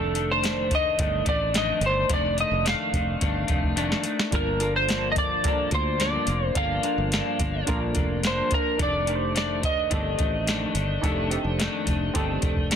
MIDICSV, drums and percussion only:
0, 0, Header, 1, 2, 480
1, 0, Start_track
1, 0, Tempo, 558140
1, 1802, Time_signature, 4, 2, 24, 8
1, 10972, End_track
2, 0, Start_track
2, 0, Title_t, "Drums"
2, 130, Note_on_c, 9, 42, 69
2, 216, Note_off_c, 9, 42, 0
2, 375, Note_on_c, 9, 42, 76
2, 390, Note_on_c, 9, 38, 127
2, 461, Note_off_c, 9, 42, 0
2, 476, Note_off_c, 9, 38, 0
2, 610, Note_on_c, 9, 36, 73
2, 611, Note_on_c, 9, 42, 78
2, 696, Note_off_c, 9, 36, 0
2, 697, Note_off_c, 9, 42, 0
2, 849, Note_on_c, 9, 42, 94
2, 853, Note_on_c, 9, 36, 102
2, 935, Note_off_c, 9, 42, 0
2, 939, Note_off_c, 9, 36, 0
2, 1084, Note_on_c, 9, 42, 63
2, 1089, Note_on_c, 9, 36, 102
2, 1170, Note_off_c, 9, 42, 0
2, 1175, Note_off_c, 9, 36, 0
2, 1327, Note_on_c, 9, 42, 93
2, 1337, Note_on_c, 9, 38, 110
2, 1413, Note_off_c, 9, 42, 0
2, 1423, Note_off_c, 9, 38, 0
2, 1560, Note_on_c, 9, 42, 70
2, 1646, Note_off_c, 9, 42, 0
2, 1802, Note_on_c, 9, 42, 95
2, 1803, Note_on_c, 9, 36, 122
2, 1888, Note_off_c, 9, 42, 0
2, 1889, Note_off_c, 9, 36, 0
2, 2045, Note_on_c, 9, 42, 74
2, 2131, Note_off_c, 9, 42, 0
2, 2286, Note_on_c, 9, 42, 80
2, 2300, Note_on_c, 9, 38, 123
2, 2372, Note_off_c, 9, 42, 0
2, 2386, Note_off_c, 9, 38, 0
2, 2524, Note_on_c, 9, 36, 81
2, 2527, Note_on_c, 9, 42, 76
2, 2610, Note_off_c, 9, 36, 0
2, 2613, Note_off_c, 9, 42, 0
2, 2763, Note_on_c, 9, 42, 88
2, 2767, Note_on_c, 9, 36, 100
2, 2849, Note_off_c, 9, 42, 0
2, 2853, Note_off_c, 9, 36, 0
2, 2994, Note_on_c, 9, 42, 68
2, 3003, Note_on_c, 9, 36, 96
2, 3080, Note_off_c, 9, 42, 0
2, 3089, Note_off_c, 9, 36, 0
2, 3121, Note_on_c, 9, 36, 76
2, 3207, Note_off_c, 9, 36, 0
2, 3242, Note_on_c, 9, 42, 91
2, 3328, Note_off_c, 9, 42, 0
2, 3370, Note_on_c, 9, 38, 64
2, 3456, Note_off_c, 9, 38, 0
2, 3470, Note_on_c, 9, 42, 73
2, 3556, Note_off_c, 9, 42, 0
2, 3607, Note_on_c, 9, 38, 93
2, 3693, Note_off_c, 9, 38, 0
2, 3718, Note_on_c, 9, 36, 117
2, 3718, Note_on_c, 9, 42, 92
2, 3804, Note_off_c, 9, 36, 0
2, 3804, Note_off_c, 9, 42, 0
2, 3957, Note_on_c, 9, 42, 76
2, 4043, Note_off_c, 9, 42, 0
2, 4202, Note_on_c, 9, 42, 76
2, 4216, Note_on_c, 9, 38, 127
2, 4288, Note_off_c, 9, 42, 0
2, 4302, Note_off_c, 9, 38, 0
2, 4439, Note_on_c, 9, 42, 74
2, 4440, Note_on_c, 9, 36, 84
2, 4525, Note_off_c, 9, 42, 0
2, 4526, Note_off_c, 9, 36, 0
2, 4679, Note_on_c, 9, 42, 99
2, 4684, Note_on_c, 9, 36, 101
2, 4765, Note_off_c, 9, 42, 0
2, 4770, Note_off_c, 9, 36, 0
2, 4912, Note_on_c, 9, 42, 63
2, 4921, Note_on_c, 9, 36, 100
2, 4998, Note_off_c, 9, 42, 0
2, 5007, Note_off_c, 9, 36, 0
2, 5158, Note_on_c, 9, 42, 94
2, 5167, Note_on_c, 9, 38, 118
2, 5244, Note_off_c, 9, 42, 0
2, 5253, Note_off_c, 9, 38, 0
2, 5390, Note_on_c, 9, 42, 75
2, 5476, Note_off_c, 9, 42, 0
2, 5636, Note_on_c, 9, 42, 97
2, 5638, Note_on_c, 9, 36, 116
2, 5722, Note_off_c, 9, 42, 0
2, 5724, Note_off_c, 9, 36, 0
2, 5877, Note_on_c, 9, 42, 80
2, 5963, Note_off_c, 9, 42, 0
2, 6122, Note_on_c, 9, 42, 79
2, 6137, Note_on_c, 9, 38, 119
2, 6208, Note_off_c, 9, 42, 0
2, 6223, Note_off_c, 9, 38, 0
2, 6360, Note_on_c, 9, 42, 71
2, 6362, Note_on_c, 9, 36, 80
2, 6446, Note_off_c, 9, 42, 0
2, 6448, Note_off_c, 9, 36, 0
2, 6597, Note_on_c, 9, 42, 100
2, 6606, Note_on_c, 9, 36, 100
2, 6683, Note_off_c, 9, 42, 0
2, 6692, Note_off_c, 9, 36, 0
2, 6834, Note_on_c, 9, 42, 65
2, 6843, Note_on_c, 9, 36, 101
2, 6920, Note_off_c, 9, 42, 0
2, 6929, Note_off_c, 9, 36, 0
2, 7082, Note_on_c, 9, 42, 99
2, 7091, Note_on_c, 9, 38, 110
2, 7168, Note_off_c, 9, 42, 0
2, 7177, Note_off_c, 9, 38, 0
2, 7316, Note_on_c, 9, 42, 73
2, 7325, Note_on_c, 9, 36, 108
2, 7402, Note_off_c, 9, 42, 0
2, 7411, Note_off_c, 9, 36, 0
2, 7563, Note_on_c, 9, 36, 122
2, 7563, Note_on_c, 9, 42, 95
2, 7649, Note_off_c, 9, 36, 0
2, 7649, Note_off_c, 9, 42, 0
2, 7803, Note_on_c, 9, 42, 78
2, 7889, Note_off_c, 9, 42, 0
2, 8047, Note_on_c, 9, 42, 83
2, 8062, Note_on_c, 9, 38, 127
2, 8133, Note_off_c, 9, 42, 0
2, 8148, Note_off_c, 9, 38, 0
2, 8285, Note_on_c, 9, 42, 74
2, 8286, Note_on_c, 9, 36, 85
2, 8371, Note_off_c, 9, 42, 0
2, 8372, Note_off_c, 9, 36, 0
2, 8522, Note_on_c, 9, 42, 92
2, 8531, Note_on_c, 9, 36, 104
2, 8608, Note_off_c, 9, 42, 0
2, 8617, Note_off_c, 9, 36, 0
2, 8760, Note_on_c, 9, 42, 68
2, 8768, Note_on_c, 9, 36, 106
2, 8846, Note_off_c, 9, 42, 0
2, 8854, Note_off_c, 9, 36, 0
2, 9008, Note_on_c, 9, 42, 95
2, 9017, Note_on_c, 9, 38, 116
2, 9094, Note_off_c, 9, 42, 0
2, 9103, Note_off_c, 9, 38, 0
2, 9244, Note_on_c, 9, 42, 75
2, 9330, Note_off_c, 9, 42, 0
2, 9487, Note_on_c, 9, 36, 120
2, 9491, Note_on_c, 9, 42, 90
2, 9573, Note_off_c, 9, 36, 0
2, 9577, Note_off_c, 9, 42, 0
2, 9730, Note_on_c, 9, 42, 72
2, 9816, Note_off_c, 9, 42, 0
2, 9973, Note_on_c, 9, 42, 82
2, 9987, Note_on_c, 9, 38, 124
2, 10059, Note_off_c, 9, 42, 0
2, 10073, Note_off_c, 9, 38, 0
2, 10207, Note_on_c, 9, 36, 80
2, 10207, Note_on_c, 9, 42, 82
2, 10293, Note_off_c, 9, 36, 0
2, 10293, Note_off_c, 9, 42, 0
2, 10448, Note_on_c, 9, 42, 90
2, 10451, Note_on_c, 9, 36, 94
2, 10534, Note_off_c, 9, 42, 0
2, 10537, Note_off_c, 9, 36, 0
2, 10682, Note_on_c, 9, 42, 64
2, 10688, Note_on_c, 9, 36, 98
2, 10768, Note_off_c, 9, 42, 0
2, 10774, Note_off_c, 9, 36, 0
2, 10807, Note_on_c, 9, 36, 83
2, 10893, Note_off_c, 9, 36, 0
2, 10930, Note_on_c, 9, 42, 100
2, 10940, Note_on_c, 9, 38, 118
2, 10972, Note_off_c, 9, 38, 0
2, 10972, Note_off_c, 9, 42, 0
2, 10972, End_track
0, 0, End_of_file